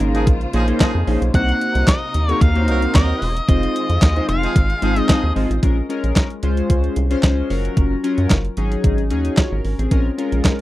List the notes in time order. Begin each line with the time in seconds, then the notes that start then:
Already playing: C#3 G#3 A#3 C#4 D#4 F4 G#4 A#4 C5
0.00 G#1, closed hi-hat
0.14 F3 D#4 G#4, closed hi-hat
0.27 A#1, kick, closed hi-hat
0.41 closed hi-hat
0.53 A#1 F3 A#3 C#4 D#4 G#4 C5, closed hi-hat
0.68 A#3 C#4 D#4 G#4 C5, closed hi-hat
0.80 F3 D#4 G#4, kick, snare, clap, closed hi-hat
0.95 F2
1.07 A#1 A#3 C#4 D#4 G#4 C5, open hi-hat
1.21 B1, closed hi-hat
1.34 C2 C3 A#3 C4 D#4 F#4 C5 F#5, kick, closed hi-hat
1.49 closed hi-hat
1.61 closed hi-hat
1.75 C2, closed hi-hat
1.88 D#5, kick, snare, clap, closed hi-hat
2.14 D#2, closed hi-hat
2.28 F#3 A#3 C4 D#4 F#4 G#4 A#4 C#5, closed hi-hat
2.41 D#2 F5, kick, closed hi-hat
2.55 A#3 C4 C#4 F#4 C5, closed hi-hat
2.62 D#4
2.68 C2 F#3 D#4 A#4, closed hi-hat
2.82 closed hi-hat
2.95 D#2 F#3 D#4 A#4 D#5, kick, snare, clap, closed hi-hat
3.22 E1, open hi-hat
3.37 closed hi-hat
3.48 F1 D#3 G#3 C4 D#4 F4 C5 D#5, kick, closed hi-hat
3.63 closed hi-hat
3.76 closed hi-hat
3.90 F2, closed hi-hat
4.02 D#2, kick, snare, clap, closed hi-hat
4.16 G#3 C4 D#4 F4 C5, closed hi-hat
4.29 F1 F5, closed hi-hat
4.43 F3 D#4 G#4, closed hi-hat
4.56 G#1, kick, closed hi-hat
4.70 closed hi-hat
4.82 G#1 F3 G#3 C4 D#4 F4 G#4 C5, closed hi-hat
4.96 G#3 C4 D#4 F4 C5, closed hi-hat
5.01 D#5
5.09 F3 D#4 G#4, kick, snare, clap, closed hi-hat
5.23 D#2
5.36 G#1 G#3 C4 D#4 F4 C5, open hi-hat
5.50 A1, closed hi-hat
5.62 A#1 G#3 C#4 F4 A#4, kick, closed hi-hat
5.89 G#3 C#4 F4 A#4, closed hi-hat
6.04 A#1, closed hi-hat
6.16 kick, snare, clap, closed hi-hat
6.30 closed hi-hat
6.43 C#2 G#3 C#4 F4 C5, closed hi-hat
6.57 closed hi-hat
6.70 C#2, kick, closed hi-hat
6.84 closed hi-hat
6.96 C2, closed hi-hat
7.10 G#3 C#4 F4 C5, closed hi-hat
7.23 C#2 G#3 C#4 F4 C5, kick, snare, clap, closed hi-hat
7.50 F#1 F#3 C#4 F4 A#4, open hi-hat
7.65 closed hi-hat
7.77 F#1, kick, closed hi-hat
8.03 F#3 C#4 F4 A#4, closed hi-hat
8.18 F#2, closed hi-hat
8.30 F#1, kick, snare, clap, closed hi-hat
8.45 closed hi-hat
8.57 G#1 F#3 C#4 D#4 G#4, closed hi-hat
8.72 closed hi-hat
8.84 G#1, kick, closed hi-hat
8.98 closed hi-hat
9.10 D#2 F#3 C#4 D#4 G#4, closed hi-hat
9.25 closed hi-hat
9.37 F4 C#5, kick, snare, clap, closed hi-hat
9.52 G#1 C#4 A#4
9.64 G#1, open hi-hat
9.79 A1 C4 G#4, closed hi-hat
9.91 A#1 G#3 C#4 F4 A#4, kick, closed hi-hat
10.18 G#3 C#4 F4 A#4, closed hi-hat
10.32 A#1, closed hi-hat
10.45 kick, snare, clap, closed hi-hat